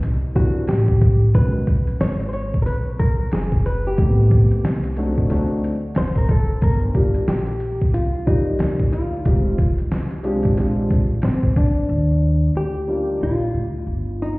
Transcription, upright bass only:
0, 0, Header, 1, 3, 480
1, 0, Start_track
1, 0, Key_signature, -3, "major"
1, 0, Tempo, 659341
1, 979, Time_signature, 4, 2, 24, 8
1, 10473, End_track
2, 0, Start_track
2, 0, Title_t, "Upright bass"
2, 0, Program_c, 0, 32
2, 15, Note_on_c, 0, 36, 92
2, 473, Note_off_c, 0, 36, 0
2, 496, Note_on_c, 0, 33, 82
2, 954, Note_off_c, 0, 33, 0
2, 980, Note_on_c, 0, 35, 86
2, 1345, Note_off_c, 0, 35, 0
2, 1457, Note_on_c, 0, 32, 97
2, 1914, Note_off_c, 0, 32, 0
2, 1937, Note_on_c, 0, 35, 86
2, 2394, Note_off_c, 0, 35, 0
2, 2417, Note_on_c, 0, 30, 73
2, 2874, Note_off_c, 0, 30, 0
2, 2899, Note_on_c, 0, 33, 100
2, 3265, Note_off_c, 0, 33, 0
2, 3379, Note_on_c, 0, 36, 80
2, 3835, Note_off_c, 0, 36, 0
2, 3858, Note_on_c, 0, 38, 102
2, 4315, Note_off_c, 0, 38, 0
2, 4339, Note_on_c, 0, 30, 81
2, 4795, Note_off_c, 0, 30, 0
2, 4820, Note_on_c, 0, 31, 89
2, 5185, Note_off_c, 0, 31, 0
2, 5298, Note_on_c, 0, 34, 85
2, 5754, Note_off_c, 0, 34, 0
2, 5776, Note_on_c, 0, 36, 87
2, 6233, Note_off_c, 0, 36, 0
2, 6257, Note_on_c, 0, 38, 93
2, 6714, Note_off_c, 0, 38, 0
2, 6737, Note_on_c, 0, 29, 103
2, 7104, Note_off_c, 0, 29, 0
2, 7216, Note_on_c, 0, 36, 84
2, 7673, Note_off_c, 0, 36, 0
2, 7696, Note_on_c, 0, 34, 83
2, 8154, Note_off_c, 0, 34, 0
2, 8176, Note_on_c, 0, 32, 84
2, 8633, Note_off_c, 0, 32, 0
2, 8655, Note_on_c, 0, 39, 99
2, 9113, Note_off_c, 0, 39, 0
2, 9136, Note_on_c, 0, 38, 87
2, 9594, Note_off_c, 0, 38, 0
2, 9615, Note_on_c, 0, 34, 81
2, 9845, Note_off_c, 0, 34, 0
2, 9855, Note_on_c, 0, 38, 81
2, 10085, Note_off_c, 0, 38, 0
2, 10095, Note_on_c, 0, 31, 83
2, 10473, Note_off_c, 0, 31, 0
2, 10473, End_track
3, 0, Start_track
3, 0, Title_t, "Muted upright bass strokes"
3, 1364, Note_on_c, 9, 29, 35
3, 1436, Note_off_c, 9, 29, 0
3, 3284, Note_on_c, 9, 29, 41
3, 3357, Note_off_c, 9, 29, 0
3, 5204, Note_on_c, 9, 29, 41
3, 5277, Note_off_c, 9, 29, 0
3, 7122, Note_on_c, 9, 29, 42
3, 7195, Note_off_c, 9, 29, 0
3, 10473, End_track
0, 0, End_of_file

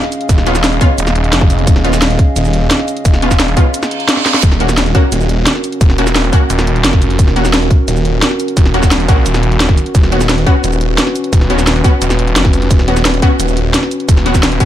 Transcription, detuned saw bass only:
0, 0, Header, 1, 2, 480
1, 0, Start_track
1, 0, Tempo, 344828
1, 408, Time_signature, 4, 2, 24, 8
1, 20394, End_track
2, 0, Start_track
2, 0, Title_t, "Detuned saw bass"
2, 0, Program_c, 0, 39
2, 406, Note_on_c, 0, 27, 100
2, 1108, Note_off_c, 0, 27, 0
2, 1367, Note_on_c, 0, 27, 100
2, 1828, Note_off_c, 0, 27, 0
2, 1847, Note_on_c, 0, 29, 101
2, 2308, Note_off_c, 0, 29, 0
2, 2327, Note_on_c, 0, 27, 97
2, 3028, Note_off_c, 0, 27, 0
2, 3287, Note_on_c, 0, 27, 100
2, 3748, Note_off_c, 0, 27, 0
2, 4247, Note_on_c, 0, 27, 103
2, 4948, Note_off_c, 0, 27, 0
2, 6166, Note_on_c, 0, 27, 100
2, 6867, Note_off_c, 0, 27, 0
2, 7127, Note_on_c, 0, 27, 98
2, 7588, Note_off_c, 0, 27, 0
2, 8087, Note_on_c, 0, 27, 101
2, 8788, Note_off_c, 0, 27, 0
2, 9047, Note_on_c, 0, 27, 100
2, 9508, Note_off_c, 0, 27, 0
2, 9527, Note_on_c, 0, 29, 104
2, 9988, Note_off_c, 0, 29, 0
2, 10006, Note_on_c, 0, 27, 103
2, 10708, Note_off_c, 0, 27, 0
2, 10967, Note_on_c, 0, 27, 96
2, 11428, Note_off_c, 0, 27, 0
2, 11926, Note_on_c, 0, 27, 100
2, 12627, Note_off_c, 0, 27, 0
2, 12646, Note_on_c, 0, 34, 98
2, 12868, Note_off_c, 0, 34, 0
2, 12886, Note_on_c, 0, 27, 101
2, 13588, Note_off_c, 0, 27, 0
2, 13846, Note_on_c, 0, 27, 103
2, 14547, Note_off_c, 0, 27, 0
2, 14807, Note_on_c, 0, 27, 103
2, 15268, Note_off_c, 0, 27, 0
2, 15766, Note_on_c, 0, 27, 99
2, 16468, Note_off_c, 0, 27, 0
2, 16727, Note_on_c, 0, 27, 101
2, 17188, Note_off_c, 0, 27, 0
2, 17207, Note_on_c, 0, 29, 98
2, 17668, Note_off_c, 0, 29, 0
2, 17687, Note_on_c, 0, 27, 100
2, 18388, Note_off_c, 0, 27, 0
2, 18646, Note_on_c, 0, 27, 94
2, 19107, Note_off_c, 0, 27, 0
2, 19606, Note_on_c, 0, 27, 102
2, 20308, Note_off_c, 0, 27, 0
2, 20394, End_track
0, 0, End_of_file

